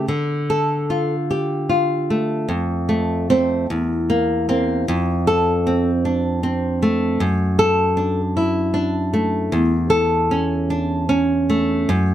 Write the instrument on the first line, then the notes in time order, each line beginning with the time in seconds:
nylon-string guitar
0.08 D3
0.50 A4
0.90 F4
1.31 G4
1.69 F4
2.10 A3
2.49 F2
2.89 A3
3.30 A3 C4
3.70 E2
4.10 A#3
4.49 A#3 C4
4.88 F2
5.27 A4
5.67 C4
6.05 D4
6.43 C4
6.83 A3
7.20 F#2
7.59 A4
7.97 D4
8.37 E4
8.74 D4
9.13 A3
9.52 E2
9.90 A4
10.31 C#4
10.70 D4
11.09 C#4
11.50 A3
11.89 F#2